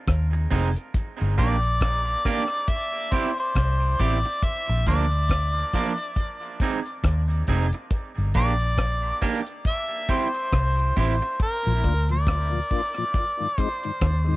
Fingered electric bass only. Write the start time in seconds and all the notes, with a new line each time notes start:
0.08 D#2
0.52 F1
1.21 G1
1.39 A#1
3.56 C2
4.00 A1
4.69 A#1
4.87 D2
7.04 D#2
7.49 F1
8.18 G1
8.36 A#1
10.53 C2
10.97 A1
11.67 A#1
11.85 D2
14.02 D#2